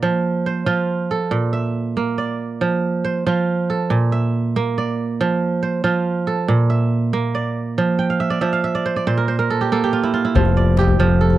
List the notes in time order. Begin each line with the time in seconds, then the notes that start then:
Already playing: A#3 D5
0.03 F3
0.46 C5
0.66 F3 F4
1.11 A4
1.31 A#2
1.53 E5
1.97 A#3
2.18 D5
2.61 F3
3.04 C5
3.26 F3 F4
3.70 A4
3.90 A#2
4.12 E5
4.56 A#3
4.78 D5
5.21 F3
5.63 C5
5.84 F3 F4
6.27 A4
6.48 A#2
6.70 E5
7.13 A#3
7.35 D5
7.78 F3
7.99 G5
8.10 F5
8.20 E5
8.30 D5
8.41 F3 E5
8.53 F5
8.64 E5
8.75 D5
8.86 C5
8.96 D5
9.07 A#2 C5
9.17 A#4
9.28 C5
9.39 A#4
9.50 A4
9.61 G4
9.72 A#3 A4
9.84 G4
9.93 F4
10.03 E4
10.14 F4
10.25 E4
10.35 F1 F3, djembe slap, djembe bass
10.45 djembe tone
10.57 D5
10.77 G4, djembe slap
10.88 djembe tone, djembe bass
10.99 F1 F3
11.21 A4
11.30 djembe slap, djembe tone